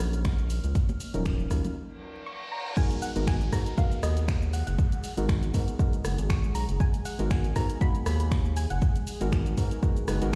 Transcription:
Already playing: F3 F#3 A#3 C#4 D#4 A#4 C#5 D#5 F#5 C#6 F6
0.00 A#1, shaker
0.13 closed hi-hat, shaker
0.25 finger snap, kick, closed hi-hat, high conga, shaker
0.38 closed hi-hat, shaker
0.50 open hi-hat, shaker
0.64 C#2, closed hi-hat, shaker
0.75 kick, closed hi-hat, low conga, shaker
0.89 closed hi-hat, high conga, shaker
1.00 open hi-hat, shaker
1.14 D#1 F3 F#3 C#4 D#4 A#4, closed hi-hat, shaker
1.26 finger snap, kick, closed hi-hat, shaker
1.39 shaker
1.50 D#2 F#3 C#4 D#4 F4 A#4, kick, cross-stick, open hi-hat, shaker
1.64 closed hi-hat, high conga, low conga, shaker
1.76 reverse cymbal
2.26 C#6
2.52 A#5
2.76 G#3 B3 D#4 F#4 G#4 A#4 F#5 G#5, kick, crash, downlifter, shaker
2.91 closed hi-hat, shaker
3.02 F#5, open hi-hat, shaker
3.15 G#1 G#3 B3 D#4 F#4 A#4, closed hi-hat, shaker
3.27 G#5, finger snap, kick, shaker
3.41 closed hi-hat, shaker
3.52 G#2 G#3 B3 D#4 F#4 A#4 A#5, kick, cross-stick, open hi-hat, shaker
3.66 closed hi-hat, shaker
3.77 G#3 B3 D#4 F#4 A#4 F5, kick, shaker
3.92 closed hi-hat, shaker
4.03 D#2 D#5, cross-stick, open hi-hat, shaker
4.17 closed hi-hat, shaker
4.28 finger snap, kick, shaker
4.42 shaker
4.53 F#5, open hi-hat, shaker
4.67 F#1 F#5, closed hi-hat, shaker
4.78 kick, shaker
4.92 closed hi-hat, shaker
5.04 open hi-hat, shaker
5.17 G#1 G#3 B3 D#4 F#4 A#4, closed hi-hat, shaker
5.29 finger snap, kick, shaker
5.43 closed hi-hat, shaker
5.54 G#2 G#3 B3 D#4 F#4 A#4, kick, open hi-hat, shaker
5.68 closed hi-hat, shaker
5.78 G#3 B3 D#4 F#4 A#4, kick, shaker
5.93 closed hi-hat, shaker
6.05 F#1, cross-stick, open hi-hat, shaker
6.18 G#1, closed hi-hat, shaker
6.30 C#6, finger snap, kick, shaker
6.44 shaker
6.55 B1 A#5, open hi-hat, shaker
6.69 F#1, closed hi-hat, shaker
6.80 G#5, kick, shaker
6.94 closed hi-hat, shaker
7.05 F#5, open hi-hat, shaker
7.19 G#1 G#3 B3 D#4 F#4 A#4, closed hi-hat, shaker
7.30 G#5, finger snap, kick, shaker
7.44 closed hi-hat, shaker
7.55 G#2 G#3 B3 D#4 F#4 A#4 A#5, kick, cross-stick, open hi-hat, shaker
7.70 closed hi-hat, shaker
7.80 G#3 A#3 B3 D#4 F#4 B5, kick, shaker
7.95 closed hi-hat, shaker
8.06 D#2 B5, cross-stick, open hi-hat, shaker
8.20 closed hi-hat, shaker
8.31 finger snap, kick, shaker
8.45 shaker
8.57 G#5, open hi-hat, shaker
8.70 F#1 F#5, closed hi-hat, shaker
8.82 kick, shaker
8.96 closed hi-hat, shaker
9.07 open hi-hat, shaker
9.20 G#1 G#3 B3 D#4 F#4 A#4, closed hi-hat, shaker
9.32 finger snap, kick, shaker
9.46 closed hi-hat, shaker
9.57 G#2 G#3 B3 D#4 F#4 A#4, kick, open hi-hat, shaker
9.71 closed hi-hat, shaker
9.82 G#3 B3 D#4 F#4 A#4, kick, shaker
9.96 closed hi-hat, shaker
10.07 F#1 G#3 B3 D#4 F#4 B4, cross-stick, open hi-hat, shaker
10.21 G#1 G#3 B3 D#4 F#4 A#4, closed hi-hat, shaker

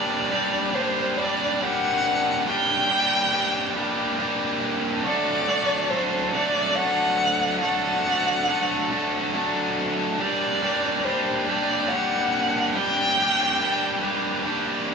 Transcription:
Already playing: G3 A#3 D4 G4 D5
0.30 G3 A#3 D4 G4
0.74 G3 A#3 D4 G4 C5
1.16 G3 A#3 D4 G4 D5
1.60 G3 A#3 D4 G4 F#5
2.46 G3 A#3 D4 G4 G5
2.90 G3 A#3 D4 G4
3.33 G3 A#3 D4 G4
3.76 G3 A#3 D4 G4
4.18 G3 A#3 D4 G4
5.04 F#3 A3 D4 A4 D5
5.47 F#3 A3 D4 A4
5.90 F#3 A3 D4 A4 C5
6.33 F#3 A3 D4 A4 D5
6.76 F#3 A3 D4 A4 F#5
7.62 F#3 A3 D4 A4 F#5
8.05 F#3 A3 D4 A4
8.48 F#3 A3 D4 A4
8.90 F#3 A3 D4 A4
9.34 F#3 A3 D4 A4
10.19 G3 A#3 D4 G4 D5
10.62 G3 A#3 D4 G4
11.05 G3 A#3 D4 G4 C5
11.47 G3 A#3 D4 G4 D5
11.89 G3 A#3 D4 G4 F#5
12.75 G3 A#3 D4 G4 G5
13.19 G3 A#3 D4 G4
13.60 G3 A#3 D4 G4
14.02 G3 A#3 D4 G4
14.45 G3 A#3 D4 G4

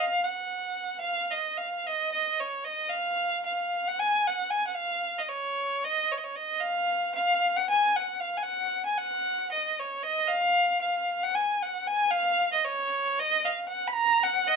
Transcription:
0.00 F5
0.25 F#5
1.01 F5
1.31 D#5
1.58 F5
1.87 D#5
2.12 D#5
2.40 C#5
2.65 D#5
2.90 F5
3.46 F5
3.88 F#5
4.00 G#5
4.27 F#5
4.51 G#5
4.67 F#5
4.75 F5
5.18 D#5
5.29 C#5
5.84 D#5
6.12 C#5
6.18 D#5
6.24 C#5
6.36 D#5
6.60 F5
7.15 F5
7.57 F#5
7.70 G#5
7.96 F#5
8.20 F5
8.37 G#5
8.43 F#5
8.86 G#5
8.98 F#5
9.52 D#5
9.79 C#5
10.03 D#5
10.28 F5
10.81 F5
11.23 F#5
11.35 G#5
11.63 F#5
11.87 G#5
12.11 F5
12.53 D#5
12.65 C#5
13.20 D#5
13.45 F5
13.68 F#5
13.88 B5
13.93 A#5
14.23 F#5
14.48 D#5

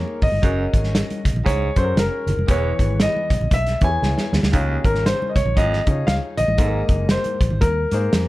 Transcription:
Already playing: A#3 D#4 G#4 A#4 C#5
0.07 muted conga
0.22 G#1 D#5, kick, open hi-hat, low conga
0.32 G1, high conga
0.42 F#1 F#2 C#4 F#4 G#4 A#4, kick, closed hi-hat, muted conga
0.74 G#1, kick, closed hi-hat
0.84 snare
0.95 snare, closed hi-hat
1.10 closed hi-hat, high conga
1.25 C2, kick, closed hi-hat
1.33 A#1, low conga
1.45 C#2 G#2 C#5, kick, closed hi-hat, high conga
1.62 muted conga
1.76 F#2 C#4 F#4 G#4 A4 C5, kick, closed hi-hat
1.84 A#4
1.96 F#1 A#4, snare, closed hi-hat, muted conga
2.27 F#1, closed hi-hat, low conga
2.37 F1, high conga
2.48 E1 E2 E3 B3 E4 G#4 B4 C#5, kick, closed hi-hat, muted conga, low conga
2.79 G#1, kick, closed hi-hat
2.91 high conga
3.00 D#5, snare, closed hi-hat
3.17 high conga
3.30 B1, kick, closed hi-hat
3.40 A#1, low conga
3.51 B1 E5, kick, closed hi-hat, high conga
3.66 snare, closed hi-hat
3.81 E2 B3 E4 G4 C#5 G#5, kick, closed hi-hat
3.89 G#4
4.02 C#2, snare, muted conga
4.18 snare, muted conga
4.33 D#2, snare, low conga
4.43 D2, snare, high conga
4.53 C#2 D#2 C#3 D#4 F4 G#4 C#5, kick, closed hi-hat, muted conga
4.84 G#1 A#4, kick, closed hi-hat
4.95 snare
5.06 C5, snare, closed hi-hat, muted conga
5.22 muted conga, high conga
5.29 D#5
5.36 C2 C#5, kick, closed hi-hat
5.45 A#1, low conga
5.56 G#1 F2 D#5, kick, closed hi-hat, muted conga, high conga
5.72 snare, muted conga
5.87 C#3 D#4 F4 G#4 C#5, kick, closed hi-hat
6.07 C#2 F5, snare, closed hi-hat, muted conga
6.37 A#1 D#5, closed hi-hat, low conga
6.48 A1, high conga
6.58 G#1 G#2 A#3 D#4 G#4 A4, kick, closed hi-hat, muted conga
6.66 A#4
6.89 F#1, kick, closed hi-hat
7.09 C5, snare, closed hi-hat
7.24 closed hi-hat, muted conga, high conga
7.40 A#1, kick, closed hi-hat
7.50 G#1, low conga
7.61 D#2 A#4, kick, closed hi-hat, high conga
7.91 G#2 A#3 D#4 G#4 C5, closed hi-hat
8.13 F2, snare, closed hi-hat

